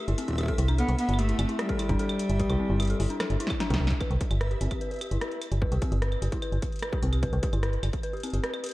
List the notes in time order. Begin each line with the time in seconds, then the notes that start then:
Already playing: A3 E5
0.08 G1 E4, closed hi-hat
0.18 C4, closed hi-hat
0.28 E4, kick, closed hi-hat
0.31 kick
0.33 kick
0.36 kick, closed hi-hat, claves
0.38 G4, kick
0.41 kick
0.43 kick
0.46 kick, closed hi-hat
0.48 A4, kick
0.58 C2 E4, closed hi-hat
0.68 D4, closed hi-hat, claves
0.78 B3 A4, closed hi-hat
0.89 C2, closed hi-hat
0.99 B3, closed hi-hat
1.09 G1, closed hi-hat
1.14 claves
1.19 A3 G4, closed hi-hat
1.29 E4, closed hi-hat
1.39 G1 C4, closed hi-hat, claves
1.49 E4, closed hi-hat
1.59 G3 G4, cross-stick, closed hi-hat
1.69 A4, kick, closed hi-hat
1.79 E4, closed hi-hat, claves
1.89 G1 D4, kick, closed hi-hat
1.99 A4, closed hi-hat
2.09 closed hi-hat, claves
2.19 closed hi-hat
2.29 G1, closed hi-hat
2.40 G4, kick, closed hi-hat
2.50 C2 E4, closed hi-hat, claves
2.60 C4
2.70 G1 E4
2.80 G4, closed hi-hat, claves
2.82 closed hi-hat
2.85 closed hi-hat
2.87 A4, closed hi-hat
2.90 closed hi-hat
3.00 G1 E4, open hi-hat
3.10 D4, closed hi-hat
3.20 A4, cross-stick, snare, closed hi-hat, claves
3.30 G1, closed hi-hat
3.40 E4, closed hi-hat
3.47 kick, snare, closed hi-hat, claves
3.60 D4, snare, closed hi-hat
3.70 C2 D4, kick, snare, closed hi-hat
3.80 C2
3.87 kick, snare, closed hi-hat
4.01 B4, kick, closed hi-hat, claves
4.11 C2, closed hi-hat
4.21 kick, closed hi-hat
4.31 G1, closed hi-hat, claves
4.41 B4, cross-stick, closed hi-hat
4.51 G4, closed hi-hat
4.61 G1 C4, closed hi-hat
4.71 G4, kick, closed hi-hat, claves
4.81 B4, closed hi-hat
4.91 B4, closed hi-hat
4.94 closed hi-hat
4.96 closed hi-hat
4.99 G4, closed hi-hat
5.01 closed hi-hat, claves
5.04 closed hi-hat
5.06 closed hi-hat
5.09 E4, closed hi-hat
5.11 G1, closed hi-hat
5.21 B4, cross-stick, closed hi-hat
5.31 closed hi-hat
5.42 closed hi-hat, claves
5.52 G1, closed hi-hat
5.62 B4, kick
5.72 C2 G4, closed hi-hat
5.82 C4, kick, closed hi-hat
5.92 G1 G4, closed hi-hat
6.02 B4, cross-stick, closed hi-hat
6.12 B4, closed hi-hat, claves
6.22 G1 G4, closed hi-hat
6.32 E4, kick, closed hi-hat
6.42 B4, closed hi-hat, claves
6.52 G1, closed hi-hat
6.62 kick, closed hi-hat
6.72 closed hi-hat
6.76 closed hi-hat
6.79 B4, cross-stick, closed hi-hat
6.83 closed hi-hat, claves
6.93 G4, kick, closed hi-hat
7.03 C2 C4, closed hi-hat
7.13 G4, closed hi-hat, claves
7.23 B4, kick, closed hi-hat
7.33 C2 B4, closed hi-hat
7.43 G4, kick, closed hi-hat
7.53 G1 E4, closed hi-hat, claves
7.63 B4, cross-stick, closed hi-hat
7.73 closed hi-hat
7.83 G1, closed hi-hat, claves
7.93 kick, closed hi-hat
8.03 B4, closed hi-hat
8.13 G4, closed hi-hat
8.17 closed hi-hat
8.20 closed hi-hat
8.23 C4, closed hi-hat, claves
8.27 closed hi-hat
8.30 G1, closed hi-hat
8.34 G4, closed hi-hat
8.44 B4, cross-stick, closed hi-hat
8.54 B4, closed hi-hat, claves
8.64 G4, closed hi-hat
8.66 closed hi-hat
8.69 closed hi-hat